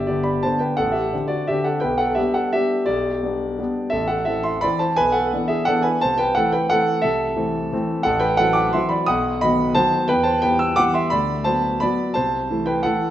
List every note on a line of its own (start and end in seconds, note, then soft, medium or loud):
0.00 0.45 G1 soft
0.00 0.08 G4 soft
0.00 0.45 E5 medium
0.07 0.41 D3 soft
0.07 0.41 B3 soft
0.07 0.41 D4 soft
0.07 0.24 G4 medium
0.07 0.22 D5 medium
0.23 0.41 D5 medium
0.23 0.42 B5 medium
0.43 0.75 D3 soft
0.43 0.76 B3 soft
0.43 0.76 D4 soft
0.43 0.60 C5 medium
0.43 0.61 A5 medium
0.59 0.77 B4 soft
0.59 0.77 G5 medium
0.77 1.12 A1 soft
0.77 0.93 A4 medium
0.77 0.94 F#5 medium
0.92 1.27 G4 medium
0.92 1.29 E5 medium
1.13 1.45 D3 soft
1.13 1.46 C4 soft
1.13 1.45 D4 soft
1.28 1.47 F#4 medium
1.28 1.47 D5 medium
1.48 1.81 D3 soft
1.48 1.81 C4 soft
1.48 1.81 D4 soft
1.48 1.65 G4 medium
1.48 1.66 E5 medium
1.64 1.81 A4 medium
1.64 1.82 F#5 medium
1.80 2.17 B1 medium
1.80 1.98 B4 medium
1.80 1.99 G5 medium
1.98 2.16 A4 medium
1.98 2.16 F#5 medium
2.15 2.50 G3 soft
2.15 2.50 B3 soft
2.15 2.50 D4 soft
2.15 2.33 G4 medium
2.15 2.34 E5 medium
2.34 2.52 A4 medium
2.34 2.53 F#5 medium
2.53 2.85 G3 soft
2.53 2.85 B3 soft
2.53 2.86 D4 soft
2.53 2.85 G4 medium
2.53 2.88 E5 medium
2.86 3.22 B1 medium
2.86 3.89 G4 medium
2.86 3.93 D5 medium
3.23 3.55 G3 soft
3.23 3.55 B3 soft
3.23 3.56 D4 soft
3.59 3.90 G3 soft
3.59 3.91 B3 soft
3.59 3.91 D4 soft
3.90 4.27 A1 medium
3.90 4.07 A4 medium
3.90 4.09 E5 medium
4.08 4.25 A4 medium
4.08 4.27 F#5 medium
4.25 4.60 E3 soft
4.25 4.60 C4 soft
4.25 4.44 A4 medium
4.25 4.43 E5 medium
4.43 4.62 E5 medium
4.43 4.63 C6 medium
4.61 4.95 E3 soft
4.61 4.95 C4 soft
4.61 4.79 D5 medium
4.61 4.80 B5 medium
4.79 4.96 C5 medium
4.79 4.97 A5 medium
4.96 5.32 B1 soft
4.96 5.13 B4 medium
4.96 5.14 G#5 loud
5.12 5.47 A4 medium
5.12 5.49 F#5 medium
5.33 5.65 E3 soft
5.33 5.65 B3 soft
5.33 5.65 D4 soft
5.48 5.66 G#4 medium
5.48 5.67 E5 medium
5.65 5.98 E3 soft
5.65 5.99 B3 soft
5.65 5.98 D4 soft
5.65 5.83 A4 medium
5.65 5.84 F#5 medium
5.82 6.00 B4 medium
5.82 6.00 G#5 medium
6.01 6.36 C2 medium
6.01 6.18 C5 medium
6.01 6.18 A5 medium
6.18 6.34 B4 medium
6.18 6.35 G5 medium
6.35 6.68 E3 soft
6.35 6.68 A3 soft
6.35 6.68 C4 soft
6.35 6.52 A4 medium
6.35 6.52 F#5 medium
6.52 6.69 B4 medium
6.52 6.70 G5 medium
6.70 7.01 E3 soft
6.70 7.02 A3 soft
6.70 7.02 C4 soft
6.70 7.02 A4 medium
6.70 7.04 F#5 loud
7.02 7.36 C2 medium
7.02 8.02 A4 medium
7.02 8.05 E5 medium
7.36 7.68 E3 soft
7.36 7.68 A3 soft
7.36 7.69 C4 soft
7.72 8.03 E3 soft
7.72 8.03 A3 soft
7.72 8.04 C4 medium
8.03 8.39 A1 medium
8.03 8.21 A4 medium
8.03 8.21 F#5 medium
8.20 8.37 B4 medium
8.20 8.38 G5 medium
8.37 8.71 E3 soft
8.37 8.71 F#3 soft
8.37 8.72 C4 soft
8.37 8.55 A4 medium
8.37 8.54 F#5 loud
8.53 8.73 F#5 medium
8.53 8.73 D6 medium
8.73 9.05 E3 medium
8.73 9.06 F#3 soft
8.73 9.06 C4 soft
8.73 8.91 E5 medium
8.73 8.91 C6 medium
8.89 9.07 D5 medium
8.89 9.07 B5 medium
9.06 9.41 B1 medium
9.06 9.39 F#5 medium
9.06 9.41 D#6 loud
9.41 9.74 D#3 soft
9.41 9.74 F#3 soft
9.41 9.74 B3 medium
9.41 9.74 D#5 medium
9.41 9.76 B5 loud
9.75 10.07 D#3 soft
9.75 10.07 F#3 medium
9.75 10.07 B3 soft
9.75 10.07 C5 medium
9.75 10.09 A5 loud
10.08 10.43 E2 medium
10.08 10.25 B4 medium
10.08 10.26 G5 medium
10.23 10.42 C5 medium
10.23 10.42 A5 medium
10.42 10.75 E3 soft
10.42 10.75 G3 soft
10.42 10.76 B3 soft
10.42 10.60 B4 medium
10.42 10.58 G5 medium
10.59 10.77 G5 medium
10.59 10.78 E6 medium
10.76 11.10 E3 soft
10.76 11.10 G3 soft
10.76 11.10 B3 medium
10.76 10.94 F#5 medium
10.76 10.95 D6 loud
10.94 11.11 E5 medium
10.94 11.12 C6 medium
11.10 11.45 D2 medium
11.10 11.43 D5 medium
11.10 11.45 B5 loud
11.44 11.78 F#3 soft
11.44 11.78 B3 soft
11.44 11.78 C5 medium
11.44 11.80 A5 medium
11.80 12.13 F#3 soft
11.80 12.13 B3 soft
11.80 12.13 D5 medium
11.80 12.15 B5 medium
12.14 12.49 C2 medium
12.14 12.63 C5 medium
12.14 12.65 A5 medium
12.50 12.81 E3 soft
12.50 12.81 A3 soft
12.50 12.81 E4 soft
12.66 12.83 B4 medium
12.66 12.84 G5 medium
12.83 13.10 E3 soft
12.83 13.10 A3 soft
12.83 13.10 E4 medium
12.83 13.10 A4 medium
12.83 13.10 F#5 medium